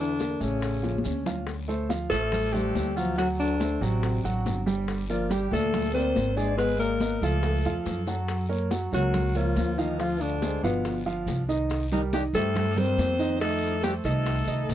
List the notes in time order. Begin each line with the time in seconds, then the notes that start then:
Already playing: E2 D3 E3 E4
0.00 D4
0.19 A#3 A#4, high bongo, high conga, short guiro, maracas
0.40 A1 C#3 A3 C#4 A4, high bongo, high conga, short guiro, maracas
0.61 high bongo, high conga, long guiro, maracas
0.83 F3 F4, high bongo, high conga, maracas
0.98 high conga
1.04 D2 C#4 C#5, short guiro, maracas
1.26 F4 F5, low bongo, low conga, short guiro, maracas
1.47 high bongo, high conga, long guiro, maracas
1.68 A3 A4 C5, high conga, maracas
1.89 F3 F4 F5, high bongo, high conga, short guiro, maracas
2.10 A1 A3 A4 C5, high bongo, high conga, short guiro, maracas
2.32 high bongo, high conga, low conga, long guiro, maracas
2.52 G3 A3 G4 A4 C5, high bongo, high conga, low conga
2.75 D2, high bongo, low bongo, high conga, short guiro, maracas
2.96 F3 F#3 F4 F#4 F#5, high bongo, short guiro, maracas
3.17 F#3 F#4 F#5, high bongo, high conga, long guiro, maracas
3.39 D3 D4, high conga, maracas
3.60 A3 A4 C5, high bongo, high conga, short guiro, maracas
3.81 A1 F#3 C4 F#4 F#5, high bongo, high conga, short guiro, maracas
3.85 C3
4.03 high bongo, high conga, long guiro, maracas
4.24 A1 F#3 F#4 F#5, high bongo, high conga, maracas
4.45 G1, high bongo, low bongo, high conga, short guiro, maracas
4.66 G3 G4 G5, high bongo, short guiro, maracas
4.88 high bongo, high conga, long guiro, maracas
5.09 F3 A#3 F4 A#4 D5, high conga, maracas
5.30 G3 G4 G5, high bongo, high conga, short guiro, maracas
5.51 D2 A#2 A3 A4 D5, high bongo, high conga, short guiro, maracas
5.73 high bongo, high conga, low conga, long guiro, maracas
5.93 A#3 C4 A#4 C5 D5, high bongo, high conga
6.16 G#1, high bongo, low bongo, high conga, short guiro, maracas
6.35 G#3 D4 G#4 D5 G#5, high bongo, short guiro, maracas
6.57 G#3 B3 G#4 B4 G#5, high bongo, high conga, long guiro, maracas
6.78 A#3 A#4, high conga, maracas
7.00 B3 B4 D#5, high bongo, high conga, short guiro, maracas
7.21 C#2 F3 A3 F4 A4 F5, high bongo, high conga, short guiro, maracas
7.43 high bongo, high conga, long guiro, maracas
7.65 E2 F3 F4 F5, high conga, maracas
7.86 F#2, low bongo, high conga, short guiro, maracas
8.07 F#3 F#4 F#5, low bongo, short guiro, maracas
8.28 high bongo, high conga, long guiro, maracas
8.49 A#3 A#4 C#5, high conga
8.71 F#3 F#4 F#5, high bongo, high conga, short guiro, maracas
8.92 C#2 F#3 A#3 F#4 A#4 C#5, high bongo, high conga, short guiro, maracas
9.14 high bongo, high conga, low conga, long guiro, maracas
9.35 F3 A#3 F4 A#4 C#5, high bongo, high conga, maracas
9.56 D2, high bongo, low bongo, high conga, short guiro, maracas
9.78 D#3 F3 D#4 F4 F5, high bongo, short guiro, maracas
9.99 F3 F4 F5, high bongo, high conga, long guiro, maracas
10.21 D3 D4, high conga, maracas
10.42 G#3 G#4 C5, high bongo, high conga, short guiro, maracas
10.63 G1 B2 F3 B3 F4 F5, high bongo, high conga, short guiro, maracas
10.85 high bongo, high conga, long guiro, maracas
11.06 F3 F4 F5, high bongo, high conga
11.26 C2, high bongo, low bongo, high conga, short guiro, maracas
11.48 D#3 D#4 D#5, high bongo, short guiro, maracas
11.70 high bongo, high conga, long guiro, maracas
11.92 D#3 G3 D#4 G4 A#4, high conga, maracas
12.13 D#3 G3 D#4 G4 D#5, high bongo, high conga, short guiro, maracas
12.33 G2 G3 A3 G4 A4 C5, high bongo, high conga, short guiro, maracas
12.55 high bongo, high conga, low conga, long guiro, maracas
12.76 G3 C4 G4 A#4 C5, high bongo, high conga, low conga, maracas
12.98 F2, high bongo, low bongo, high conga, short guiro, maracas
13.19 D#3 D#4 D#5, high bongo, short guiro, maracas
13.40 D#3 A3 D#4 A4 D#5, high bongo, high conga, long guiro, maracas
13.62 high conga, maracas
13.83 G3 A3 G4 A4 C5, high bongo, high conga, short guiro, maracas
14.04 C2 D#3 A3 D#4 A4 D#5, high bongo, high conga, short guiro, maracas
14.26 high bongo, high conga, long guiro, maracas
14.47 C2 D#3 D#4 D#5, high bongo, high conga, maracas
14.68 A#1, high bongo, low bongo, high conga, short guiro, maracas